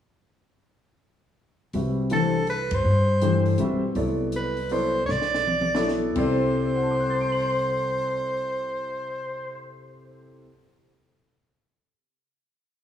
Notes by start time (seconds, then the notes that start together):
1.73 C2 G3 C4 F#4 B4 E5, open hi-hat
2.10 E3 A3 D4 G4 A4 C5, closed hi-hat
2.47 B4, open hi-hat
2.71 G2 C5, kick, ride
2.84 G2
3.22 E3 A3 D4 G4 C5, closed hi-hat
3.46 open hi-hat
3.58 B1 G3 C4 F#4 B4 E5, closed hi-hat
3.95 C2 F#3 B3 E4 A4 D5, open hi-hat
4.32 B4, closed hi-hat
4.57 open hi-hat
4.69 F#3 B3 E4 A4 C5 D5, open hi-hat
5.06 B1 C#5, snare
5.11 D5
5.22 snare
5.34 snare
5.47 mid tom
5.61 mid tom
5.75 F#3 B3 E4 A4 D5, snare
5.88 snare
6.15 C2 C3 C4 E4 A4 C5 D5, kick, crash
6.76 F#5
6.83 A5
6.91 D6
7.00 F#6
7.10 A6
7.21 D7
7.32 F#7